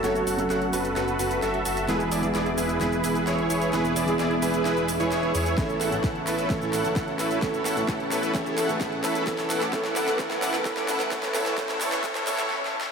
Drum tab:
HH |x--x--o--x--x--x--o--x--x--x--o--x--x--x--o--x--|x--x--o--x--x--x--o--x--x--x--o--x--x--x--o--x--|x--x--o--x--x--x--o--x--x--x--o--x--x--x--o--x--|x--x--o--x--x--x--o--x--x--x--o--x--x--x--o--x--|
SH |x--x--x--x--x-----x--x--x--x--x--x--x-----x--x--|x--x--x--x--x-----x--x--x--x--x--x--x-----x--x--|x--x--x--x--x-----x--x--x--x--x--x--x-----x--x--|x--x--x--x--x-----x--x--x--x--x--x--x-----x--x--|
SD |o-----------o-----------o-----------o-----------|o-----------o-----------o-----------o-----------|o-----------o-----------o-----------o-----------|o-----o-----o-----o-----o-----o-----o-----o-----|
BD |------------------------------------------------|------------------------------------------------|------------------------------------------------|o-----------o-----------o-----------o-----------|

HH |x--x--o--x--x--x--o--x--x--x--o--x--x--x--o--x--|x--x--o--x--x--x--o--x--x--x--o--x--x--x--o--x--|x--x--o--x--x--x--o--x--x--x--o--x--------------|
SH |x--x--x--x--x-----x--x--x--x--x--x--x-----x--x--|x--x--x--x--x-----x--x--x--x--x--x--x-----x--x--|x--x--x--x--x--x--x--x--x--x--x--x--------------|
SD |o-----o-----o-----o-----o-----o-----o-----o-----|o--o--o--o--o--o--o--o--o--o--o--o--o--o--o--o--|o--o--o--o--o--o--o--o--o--o--o--o--o---o---o---|
BD |o-----------o-----------o-----------o-----------|o-----------o-----------o-----------o-----------|o-----------o-----------o-----------------------|